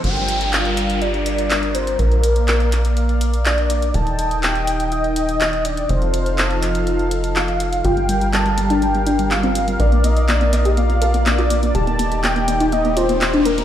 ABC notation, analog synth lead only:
X:1
M:4/4
L:1/8
Q:1/4=123
K:Gm
V:1 name="Analog synth lead"
g2 f2 d d2 c | B4 z2 d2 | a2 g2 e e2 d | c4 z2 f2 |
g2 a2 g2 f2 | d e d e f2 d2 | a2 g2 e c2 B |]